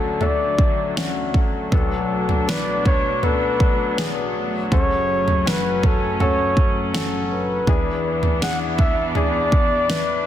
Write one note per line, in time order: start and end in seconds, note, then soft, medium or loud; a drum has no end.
0.00 1.69 D2 medium
0.00 1.69 D3 medium
0.00 7.64 F#3 medium
0.00 1.69 A3 medium
0.00 0.96 C#4 medium
0.00 0.21 D4 medium
0.00 0.97 F#4 medium
0.00 0.24 A4 medium
0.21 0.93 A3 medium
0.21 0.93 D4 medium
0.21 0.93 A4 medium
0.21 0.98 D5 medium
0.21 floor tom medium
0.59 kick medium
0.96 1.68 C#4 medium
0.96 1.69 D4 medium
0.96 1.69 F#4 medium
0.96 snare loud
1.34 2.51 A4 medium
1.34 kick medium
1.72 4.68 B1 medium
1.72 4.69 B2 medium
1.72 4.68 B2 medium
1.72 7.64 A3 medium
1.72 2.44 B3 medium
1.72 4.69 D4 medium
1.72 2.44 D4 medium
1.72 2.44 A4 medium
1.72 kick loud
1.72 floor tom loud
2.29 floor tom medium
2.48 3.19 B3 medium
2.48 3.19 D4 medium
2.48 3.20 B4 medium
2.48 2.86 D5 loud
2.48 snare loud
2.85 3.25 C#5 loud
2.85 kick medium
2.85 floor tom medium
3.23 3.94 B3 medium
3.23 3.94 D4 medium
3.23 3.94 A4 medium
3.23 4.35 B4 medium
3.23 floor tom medium
3.60 kick medium
3.98 4.68 B3 medium
3.98 4.68 D4 medium
3.98 4.69 G#4 medium
3.98 snare loud
4.72 7.64 F#1 medium
4.72 7.65 F#2 medium
4.72 7.64 F#2 medium
4.72 7.65 C#4 medium
4.72 5.42 C#4 medium
4.72 5.43 F#4 medium
4.72 5.43 A4 medium
4.72 5.49 C#5 loud
4.72 kick loud
4.72 floor tom medium
5.28 floor tom medium
5.46 6.16 C#4 medium
5.46 6.16 F#4 medium
5.46 6.17 B4 medium
5.46 5.87 B4 medium
5.46 snare loud
5.83 6.21 A4 medium
5.83 kick medium
5.83 floor tom medium
6.20 6.90 C#4 medium
6.20 6.90 F#4 medium
6.20 6.91 A4 medium
6.20 6.91 C#5 medium
6.20 floor tom medium
6.57 kick medium
6.94 7.64 C#4 medium
6.94 7.64 F#4 medium
6.94 7.64 A4 medium
6.94 snare loud
7.33 8.38 B4 medium
7.67 10.27 E2 medium
7.67 10.27 E3 medium
7.67 10.27 B3 medium
7.67 8.38 D4 medium
7.67 10.27 D4 medium
7.67 8.38 E4 medium
7.67 8.38 G#4 medium
7.67 kick medium
7.67 floor tom medium
8.23 floor tom medium
8.41 9.12 D4 medium
8.41 9.12 E4 medium
8.41 9.12 G#4 medium
8.41 8.59 F#5 loud
8.41 snare loud
8.78 9.11 E5 loud
8.78 kick medium
8.78 floor tom medium
9.11 9.18 E5 medium
9.15 9.86 D4 medium
9.15 9.86 E4 medium
9.15 9.86 G#4 medium
9.15 10.27 D5 loud
9.15 floor tom medium
9.52 kick medium
9.88 10.27 D4 medium
9.88 10.27 E4 medium
9.88 10.27 B4 medium
9.88 snare loud